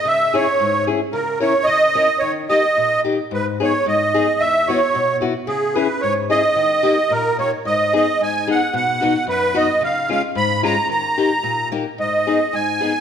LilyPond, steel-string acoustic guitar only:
\new Staff \with { instrumentName = "Steel-string acoustic guitar" } { \time 2/4 \key gis \minor \tempo 4 = 111 << { r8 <cis' e' gis'>8 r8 <cis' e' gis'>8 | r8 <cis' e' ais'>8 r8 <cis' e' ais'>8 | r8 <ais dis' g'>8 r8 <ais dis' g'>8 | r8 <b dis' gis'>8 r8 <b dis' gis'>8 |
r8 <b e' fis'>8 r8 <b e' fis'>8 | r8 <cis' e' gis'>8 r8 <cis' e' gis'>8 | r8 <ais dis' g'>8 r8 <ais dis' g'>8 | r8 <b dis' gis'>8 r8 <b dis' gis'>8 |
r8 <b dis' fis'>8 r8 <b dis' fis'>8 | r8 <gis cis' eis'>8 r8 <gis cis' eis'>8 | r8 <ais dis' g'>8 r8 <ais dis' g'>8 | r8 <b dis' gis'>8 r8 <b dis' gis'>8 | } \\ { cis4 gis,4 | cis4 cis4 | dis4 ais,4 | gis,4 gis,4 |
e,4 b,4 | cis4 gis,4 | dis4 ais,4 | gis,4 gis,4 |
b,4 fis,4 | cis4 gis,4 | dis4 ais,4 | gis,4 gis,4 | } >> }